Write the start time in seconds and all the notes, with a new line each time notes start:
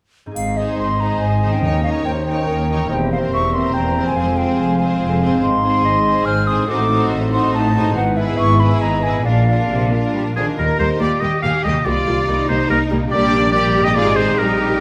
0.26 G#2 C4 D#4
0.31 G#3 G#4 F5
0.35 G#1 G#2 C4, triangle
0.56 D#4 G#4 C5 D#5
0.76 G#1 G#2 D#5 C6
0.99 D#4 G#4 C5 A#5
1.20 G#1 G#2 G#5
1.42 D#3 D#4 G#4 C5
1.49 C#4 G5
1.54 D#4
1.58 D#2 A#4
1.63 D#2 D#3 A#3 C#4 D#4 A#4 C#5
1.83 D#4 A#4 C#5 F5
2.05 D#2 C5 G5
2.26 D#4 A#4 C#5 G5
2.47 D#2 A#4
2.69 E3 D#4 A#4 C#5
2.77 C4
2.82 G4
2.86 A#4 C5
2.90 E1 E2 C4 G5
3.12 C4 A#4 C5 F5
3.32 E1 E2 E5 C#6
3.53 C4 A#4 C5 C6
3.74 E1 E2 G5 A#5
3.96 F3 C4 A#4 C5
4.03 C4 G#5
4.08 F4
4.12 G#4 F5
4.17 F1 F2 G#3 C4 G#4 C5
4.37 C4 G#4 C5 G5
4.59 F1 F2 G#5
4.79 C4 G#4 C5 G#5
5.01 F1 F2
5.21 G#2 C4 G#4 C5
5.29 C4
5.33 D#4
5.38 G#4
5.42 G#1 G#2 D#4 C6
5.63 C4 G#4 C5
5.85 G#1 G#2 D#5
6.05 C4 G#4 C5
6.25 G#1 G#2 C5 F6
6.47 C4 G#4 C5 D#6
6.51 A2
6.55 C4
6.60 D#4
6.65 A1 A2 D#4 F#4 A4
6.69 C4 F#4 C5 D6
6.89 D#4 F#4 C5
7.11 A1 A2
7.31 D#4 F#4 C5 C6
7.53 A1 A2 A5
7.75 G#2 D#4 F#4 C5
7.82 B3
7.87 E4
7.92 G#1 B3 E4 G#4 F#5
7.96 G#2 B4
8.16 E4 G#4 B4 E5
8.37 G#1 G#2 E5 C#6
8.59 E4 G#4 B4 B5
8.81 G#1 G#2 D#5 A#5
9.03 E4 G#4 B4 G#5
9.07 A#2
9.11 A#3
9.16 D4
9.21 A#3 D4 F4
9.25 A#1 A#2 D4 F4 A#4 D5 F5
9.48 D4 F4 A#4
9.69 A#1 C3
9.91 A#2 D4 F4 A#4
10.14 A#1 G3
10.36 F3 C4 D4 F4 G#4 A#4
10.40 D#3
10.45 A#3
10.49 D#4
10.54 G4
10.58 D#2 G3 A#3 D#4 A#4
10.79 D#2 G3 A#3 D#4 C5
11.00 D#2 G3 A#3 F4 G4 D5
11.21 D#2 G3 A#3 G4 D#5
11.42 D#2 G3 A#3 G#4 F5
11.64 D#2 C3 G3 A#3 G4 D#5
11.73 A#3
11.77 D#4
11.82 A#3 G4 D5
11.86 C2 G3 F4 D5
12.07 C2 G3 A#3
12.28 C2 G3 A#3 D#4
12.49 C2 G3 A#3 D#4 C5
12.70 C2 G3 A#3 D#4 A#4
12.91 C2 A#2 G3 A#3
12.98 A#3
13.02 D4
13.07 G4
13.12 A#1 G3 A#3 D4 G4 D5
13.52 G3 A#3 G4 D5
13.78 G#2
13.82 C4 G4 D#5
13.87 D#4 D#5
13.91 G#4
13.95 G#1 G#3 D#4 F4 G#4 D5
14.16 D#4 C5
14.20 A#2
14.25 D#4
14.29 G4
14.38 A#1 G3 D#4 G4 A#4